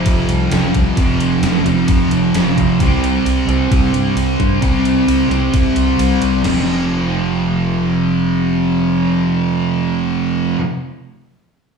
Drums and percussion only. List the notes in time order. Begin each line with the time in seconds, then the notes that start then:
0.06 kick, ride
0.29 ride
0.51 snare, ride
0.75 kick, ride
0.97 kick, ride
1.21 ride
1.43 snare, ride
1.66 ride
1.88 kick, ride
2.11 ride
2.34 snare, ride
2.57 kick, ride
2.80 kick, ride
3.04 ride
3.26 ride
3.49 ride
3.72 kick, ride
3.94 ride
4.17 ride
4.40 kick, ride
4.62 kick, ride
4.85 ride
5.08 ride
5.31 ride
5.54 kick, ride
5.76 ride
5.99 ride
6.22 ride
6.44 snare, floor tom, crash